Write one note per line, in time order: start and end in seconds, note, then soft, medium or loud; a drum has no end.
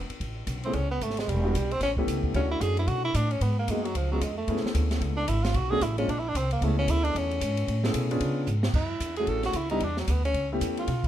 0.09 muted upright bass stroke soft
0.09 ride soft
0.20 0.46 A1 medium
0.20 kick soft
0.20 ride medium
0.47 0.73 B1 medium
0.47 kick soft
0.47 hi-hat pedal medium
0.47 ride medium
0.63 0.74 A3 medium
0.63 0.74 B3 medium
0.63 0.76 C4 medium
0.63 0.74 C#4 medium
0.63 0.74 E4 medium
0.63 0.75 G#4 medium
0.63 ride soft
0.73 1.00 C#2 medium
0.73 0.91 C#4 medium
0.73 kick soft
0.73 ride medium
0.91 1.04 B3 medium
1.01 1.27 G#1 medium
1.01 1.21 A3 medium
1.01 kick soft
1.01 hi-hat pedal medium
1.01 ride medium
1.10 snare soft
1.17 1.31 G#3 medium
1.17 snare soft
1.17 ride soft
1.28 1.54 E1 medium
1.28 1.74 G3 medium
1.28 kick soft
1.28 ride medium
1.44 1.53 G3 medium
1.44 1.54 B3 medium
1.44 1.53 D4 medium
1.44 1.54 E4 medium
1.44 1.54 F#4 medium
1.54 1.80 B1 medium
1.54 kick soft
1.54 hi-hat pedal medium
1.54 ride medium
1.71 1.82 C4 medium
1.71 ride soft
1.80 2.07 A1 medium
1.80 1.92 C#4 medium
1.80 kick soft
1.80 snare soft
1.80 ride medium
1.97 2.33 A3 medium
1.97 2.33 B3 medium
1.97 2.33 C#4 medium
1.97 2.33 E4 medium
1.97 2.33 G4 medium
1.97 kick soft
2.07 2.34 C#2 medium
2.07 kick soft
2.07 hi-hat pedal medium
2.07 ride medium
2.24 kick soft
2.34 2.60 D2 medium
2.34 3.09 A3 medium
2.34 3.09 C#4 soft
2.34 2.50 C#4 medium
2.34 3.09 D4 medium
2.34 3.09 E4 medium
2.34 3.09 F#4 medium
2.34 kick soft
2.34 ride medium
2.51 2.63 E4 medium
2.60 2.87 F#2 medium
2.60 2.78 G#4 medium
2.60 kick soft
2.60 hi-hat pedal medium
2.60 ride medium
2.77 2.89 E4 medium
2.77 ride soft
2.87 3.14 B2 medium
2.87 3.04 F#4 medium
2.87 kick soft
2.87 ride medium
3.05 3.17 E4 medium
3.14 3.40 A2 medium
3.14 3.33 D4 medium
3.14 kick soft
3.14 hi-hat pedal medium
3.14 ride medium
3.31 3.44 C#4 medium
3.31 ride soft
3.41 3.67 G#2 medium
3.41 3.58 B3 medium
3.41 kick soft
3.41 ride medium
3.59 3.73 A#3 medium
3.68 3.94 F#2 medium
3.68 3.86 G#3 medium
3.68 3.84 A#3 medium
3.68 3.84 B3 soft
3.68 3.84 D#4 medium
3.68 3.84 F#4 soft
3.68 3.84 G#4 medium
3.68 kick soft
3.68 hi-hat pedal soft
3.68 ride medium
3.84 3.99 F#3 medium
3.84 ride soft
3.95 4.21 C#2 medium
3.95 4.11 F3 medium
3.95 kick soft
3.95 ride medium
4.11 4.24 F#3 medium
4.11 4.21 G#3 medium
4.11 4.21 B3 medium
4.11 4.21 C#4 medium
4.11 4.21 F4 medium
4.11 4.21 G#4 medium
4.21 4.47 F2 medium
4.21 4.37 G#3 medium
4.21 kick soft
4.21 hi-hat pedal soft
4.21 ride medium
4.38 4.63 A3 medium
4.48 4.63 F#2 medium
4.48 5.23 A3 medium
4.48 5.23 B3 medium
4.48 5.23 C#4 medium
4.48 5.23 E4 medium
4.48 5.23 G#4 medium
4.48 kick soft
4.48 ride medium
4.57 snare soft
4.64 muted upright bass stroke soft
4.64 snare soft
4.74 5.00 D2 medium
4.74 kick soft
4.74 hi-hat pedal medium
4.74 ride medium
4.91 snare medium
4.91 ride soft
5.00 5.27 C#2 medium
5.00 kick soft
5.00 ride medium
5.17 5.30 D4 medium
5.27 5.54 G#1 medium
5.27 5.45 E4 medium
5.27 kick soft
5.27 hi-hat pedal medium
5.27 ride medium
5.44 5.58 F4 medium
5.44 snare medium
5.44 ride soft
5.54 5.81 B1 medium
5.54 5.72 F#4 medium
5.54 kick soft
5.54 ride medium
5.70 5.80 A3 medium
5.70 5.81 B3 medium
5.70 5.81 C#4 medium
5.70 5.81 D4 medium
5.70 5.81 F#4 medium
5.70 5.84 G#4 loud
5.81 6.07 A1 medium
5.81 5.98 E4 medium
5.81 kick soft
5.81 hi-hat pedal medium
5.81 ride medium
5.98 6.08 G#3 medium
5.98 6.07 A#3 medium
5.98 6.08 C4 medium
5.98 6.11 C#4 medium
5.98 6.08 D4 medium
5.98 6.08 F4 medium
5.98 ride soft
6.08 6.34 A#1 medium
6.08 6.20 D4 medium
6.08 kick soft
6.08 ride medium
6.19 6.30 E4 medium
6.28 6.38 D4 medium
6.35 6.61 C2 medium
6.35 6.52 C4 medium
6.35 kick soft
6.35 hi-hat pedal soft
6.35 ride medium
6.51 6.65 A#3 medium
6.51 ride soft
6.61 6.87 C#2 medium
6.61 7.36 A3 medium
6.61 6.78 A3 medium
6.61 7.36 B3 medium
6.61 7.36 C#4 medium
6.61 7.36 E4 medium
6.61 7.36 G#4 medium
6.61 kick soft
6.61 ride medium
6.79 6.92 C#4 loud
6.88 7.14 D2 medium
6.88 7.05 E4 medium
6.88 kick soft
6.88 hi-hat pedal medium
6.88 ride medium
7.04 7.19 D4 loud
7.04 ride soft
7.15 7.40 E2 medium
7.15 7.96 C#4 medium
7.15 kick soft
7.15 ride medium
7.31 ride soft
7.41 7.67 G#2 medium
7.41 kick soft
7.41 hi-hat pedal medium
7.41 ride medium
7.57 ride medium
7.67 7.93 A2 medium
7.67 kick soft
7.67 ride medium
7.84 8.09 A3 medium
7.84 8.10 B3 medium
7.84 8.09 C#4 medium
7.84 8.10 E4 medium
7.84 8.10 G#4 medium
7.84 snare medium
7.94 8.20 B2 medium
7.94 kick soft
7.94 hi-hat pedal medium
7.94 ride medium
8.11 8.46 B3 medium
8.11 8.46 C#4 medium
8.11 8.46 D4 medium
8.11 8.46 F4 medium
8.11 8.46 G#4 medium
8.11 ride soft
8.20 8.47 C#3 medium
8.20 kick soft
8.20 ride medium
8.47 8.73 G#2 medium
8.47 hi-hat pedal medium
8.63 snare medium
8.74 8.99 F#2 medium
8.74 9.15 E4 medium
8.74 kick medium
8.74 crash medium
9.00 9.26 E2 medium
9.00 kick soft
9.00 hi-hat pedal medium
9.00 ride medium
9.16 9.54 A3 medium
9.16 9.54 C#4 medium
9.16 9.54 E4 medium
9.16 9.54 F#4 medium
9.16 9.30 G#4 medium
9.16 9.54 G#4 medium
9.16 ride soft
9.27 9.54 A1 medium
9.27 9.45 A4 medium
9.27 kick soft
9.27 ride medium
9.43 9.58 F#4 medium
9.43 snare soft
9.43 ride soft
9.53 9.80 C#2 medium
9.53 9.70 E4 medium
9.53 kick soft
9.53 hi-hat pedal medium
9.53 ride medium
9.70 9.80 G3 medium
9.70 9.81 B3 medium
9.70 9.81 D4 medium
9.70 9.85 D#4 medium
9.70 9.81 E4 medium
9.70 9.81 G4 medium
9.70 ride soft
9.80 10.07 E2 medium
9.80 9.99 D4 medium
9.80 kick soft
9.80 ride medium
9.97 10.13 F#3 medium
9.97 snare soft
10.08 10.34 D2 medium
10.08 10.24 B3 medium
10.08 kick soft
10.08 hi-hat pedal medium
10.08 ride medium
10.25 10.50 C#4 medium
10.25 ride soft
10.34 10.60 C#2 medium
10.34 kick soft
10.34 ride medium
10.52 10.87 A3 medium
10.52 10.87 B3 medium
10.52 10.87 C#4 medium
10.52 10.87 E4 medium
10.52 10.87 G4 medium
10.61 10.87 E2 medium
10.61 kick soft
10.61 hi-hat pedal medium
10.61 ride medium
10.77 11.08 F4 medium
10.77 ride soft
10.87 11.08 B2 medium
10.87 kick soft
10.87 ride medium
11.04 kick soft
11.04 ride soft